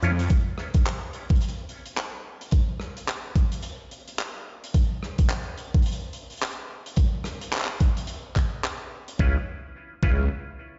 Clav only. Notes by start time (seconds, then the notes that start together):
0.03 C#4 E4 F4 C#5
9.20 C#4 E4 F4 B4
10.03 C#4 E4 F4 B4